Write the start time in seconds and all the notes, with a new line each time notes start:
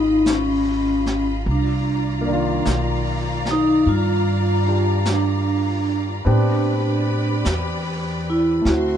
Already playing: G#1 G#3 B3 C#4 D#4 F4 G4 D#5 B5
0.26 brush sweep, snare, hi-hat pedal
0.30 C#4
1.06 snare
1.45 C2 D5 F5 A#5, brush sweep
1.51 D4
2.21 A#3
2.25 D#3 D5
2.33 F4
2.65 B1, brush sweep, snare, hi-hat pedal
3.45 snare
3.51 D#4
3.86 G2 F4, brush sweep
4.66 D4 F4 G4
5.05 brush sweep, snare, hi-hat pedal
5.10 D4
6.23 A2 B3 C4 D4 G4 B4 D5 B5, brush sweep
6.31 D4
7.45 E2, brush sweep, snare, hi-hat pedal
8.30 E4
8.61 D2 A3, brush sweep, snare
8.66 C4 E4 F#4 E5 C6
8.73 F#4